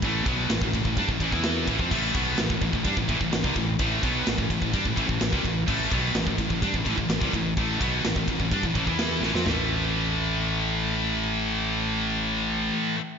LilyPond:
<<
  \new Staff \with { instrumentName = "Distorted electric guitar" } { \clef bass \time 4/4 \key c \major \tempo 4 = 127 <a, e a>8 <b, fis b>8 <a, e>16 <a, e>16 <a, e>16 <a, e>16 <g d'>16 <a, e>16 <a, e>16 <e b e'>8. <a, e>16 <f c'>16 | <a, e a>8 <b, fis b>8 <a, e>16 <a, e>16 <a, e>16 <a, e>16 <g d'>16 <a, e>16 <a, e>16 <a, e>16 <a, e>16 <c g>16 <a, e>8 | <a, e a>8 <b, fis b>8 <a, e>16 <a, e>16 <a, e>16 <a, e>16 <g d'>16 <a, e>16 <a, e>16 <a, e>16 <a, e>16 <c g>16 <a, e>8 | <a, e a>8 <b, fis b>8 <a, e>16 <a, e>16 <a, e>16 <a, e>16 <g d'>16 <a, e>16 <a, e>16 <a, e>16 <a, e>16 <c g>16 <a, e>8 |
<a, e a>8 <b, fis b>8 <a, e>16 <a, e>16 <a, e>16 <a, e>16 <g d'>16 <a, e>16 <a, e>16 <e b e'>8. <a, e>16 <f c'>16 | <a, e a>1~ | <a, e a>1 | }
  \new Staff \with { instrumentName = "Distorted electric guitar" } { \clef bass \time 4/4 \key c \major <a, e a>8 <b, fis b>8 <a, e>16 <a, e>16 <a, e>16 <a, e>16 <g d'>16 <a, e>16 <a, e>16 <e b e'>8. <a, e>16 <f c'>16 | <a, e a>8 <b, fis b>8 <a, e>16 <a, e>16 <a, e>16 <a, e>16 <g d'>16 <a, e>16 <a, e>16 <a, e>16 <a, e>16 <c g>16 <a, e>8 | <a, e a>8 <b, fis b>8 <a, e>16 <a, e>16 <a, e>16 <a, e>16 <g d'>16 <a, e>16 <a, e>16 <a, e>16 <a, e>16 <c g>16 <a, e>8 | <a, e a>8 <b, fis b>8 <a, e>16 <a, e>16 <a, e>16 <a, e>16 <g d'>16 <a, e>16 <a, e>16 <a, e>16 <a, e>16 <c g>16 <a, e>8 |
<a, e a>8 <b, fis b>8 <a, e>16 <a, e>16 <a, e>16 <a, e>16 <g d'>16 <a, e>16 <a, e>16 <e b e'>8. <a, e>16 <f c'>16 | <a, e a>1~ | <a, e a>1 | }
  \new Staff \with { instrumentName = "Fingered electric bass" } { \clef bass \time 4/4 \key c \major a,,8 b,,8 a,,16 a,,16 a,,16 a,,16 g,16 a,,16 a,,16 e,8. a,,16 f,16 | a,,8 b,,8 a,,16 a,,16 a,,16 a,,16 g,16 a,,16 a,,16 a,,16 a,,16 c,16 a,,8 | a,,8 b,,8 a,,16 a,,16 a,,16 a,,16 g,16 a,,16 a,,16 a,,16 a,,16 c,16 a,,8 | a,,8 b,,8 a,,16 a,,16 a,,16 a,,16 g,16 a,,16 a,,16 a,,16 a,,16 c,16 a,,8 |
a,,8 b,,8 a,,16 a,,16 a,,16 a,,16 g,16 a,,16 a,,16 e,8. a,,16 f,16 | a,,1~ | a,,1 | }
  \new DrumStaff \with { instrumentName = "Drums" } \drummode { \time 4/4 <bd cymr>8 <bd cymr>8 <cymr sn>16 bd16 <bd cymr>16 bd16 <bd cymr>16 bd16 <bd cymr>16 bd16 <cymr sn>8 <bd cymr>16 bd16 | <cymc bd>8 <bd cymr>8 <cymr sn>16 bd16 <bd cymr>16 bd16 <bd cymr>16 bd16 <bd cymr>16 bd16 <cymr sn>16 bd16 <bd cymr>8 | <bd cymr>8 <bd cymr>8 <cymr sn>16 bd16 <bd cymr>16 bd16 <bd cymr>16 bd16 <bd cymr>16 bd16 <cymr sn>16 bd16 <bd cymr>8 | <cymc bd>8 <bd cymr>8 <cymr sn>16 bd16 <bd cymr>16 bd16 <bd cymr>16 bd16 <bd cymr>16 bd16 <cymr sn>16 bd16 <bd cymr>8 |
<bd cymr>8 <bd cymr>8 <cymr sn>16 bd16 <bd cymr>16 bd16 <bd cymr>16 bd16 <bd cymr>16 bd16 <cymr sn>8 sn16 sn16 | <sn tomfh>4 r4 r4 r4 | r4 r4 r4 r4 | }
>>